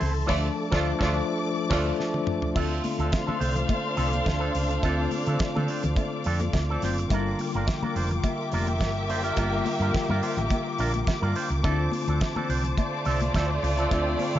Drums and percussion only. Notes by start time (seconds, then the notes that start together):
0.01 open hi-hat, muted conga, low conga
0.29 kick, snare, crash
0.72 kick, snare
1.01 kick, snare
1.70 kick, snare, crash
2.00 snare
2.14 high tom
2.27 mid tom
2.42 floor tom
2.56 kick, crash, cowbell, muted conga
2.84 open hi-hat, muted conga, high conga
2.99 closed hi-hat
3.12 kick, snare, closed hi-hat, cowbell
3.29 high conga, low conga
3.41 open hi-hat, muted conga
3.55 closed hi-hat, low conga
3.69 kick, closed hi-hat, cowbell, muted conga, high conga
3.97 open hi-hat
4.12 closed hi-hat, high conga
4.26 kick, snare, closed hi-hat, cowbell
4.55 open hi-hat
4.71 closed hi-hat
4.83 kick, closed hi-hat, cowbell, muted conga
5.11 open hi-hat, high conga
5.26 closed hi-hat
5.39 kick, snare, closed hi-hat, cowbell
5.56 high conga, low conga
5.68 open hi-hat
5.83 closed hi-hat, low conga
5.96 kick, closed hi-hat, cowbell, high conga
6.24 open hi-hat
6.40 closed hi-hat, high conga
6.53 kick, snare, closed hi-hat, cowbell, muted conga
6.82 snare, open hi-hat
6.98 closed hi-hat
7.10 kick, closed hi-hat, cowbell, muted conga
7.39 open hi-hat, high conga
7.54 closed hi-hat
7.67 kick, snare, closed hi-hat, cowbell
7.83 high conga, low conga
7.95 open hi-hat, muted conga
8.11 closed hi-hat, low conga
8.24 kick, closed hi-hat, cowbell, muted conga, high conga
8.52 open hi-hat, muted conga
8.67 closed hi-hat, high conga
8.81 kick, snare, closed hi-hat, cowbell
9.10 open hi-hat
9.24 closed hi-hat
9.36 kick, closed hi-hat, cowbell, muted conga
9.66 open hi-hat, muted conga, high conga
9.81 closed hi-hat
9.94 kick, snare, closed hi-hat, cowbell, muted conga
10.10 high conga, low conga
10.23 open hi-hat
10.37 closed hi-hat, low conga
10.50 kick, closed hi-hat, cowbell, muted conga, high conga
10.78 open hi-hat, muted conga
10.94 closed hi-hat, high conga
11.07 kick, snare, closed hi-hat, cowbell, muted conga
11.36 open hi-hat, muted conga
11.52 closed hi-hat
11.64 kick, closed hi-hat, cowbell
11.91 open hi-hat, muted conga, high conga
12.08 closed hi-hat
12.21 kick, snare, closed hi-hat, cowbell
12.36 high conga, low conga
12.50 open hi-hat
12.64 closed hi-hat, low conga
12.78 kick, closed hi-hat, cowbell, muted conga, high conga
13.05 open hi-hat, muted conga
13.21 closed hi-hat, high conga
13.34 kick, snare, closed hi-hat, cowbell, muted conga
13.63 open hi-hat, muted conga
13.79 closed hi-hat
13.91 kick, closed hi-hat, cowbell
14.19 open hi-hat, muted conga, high conga
14.35 closed hi-hat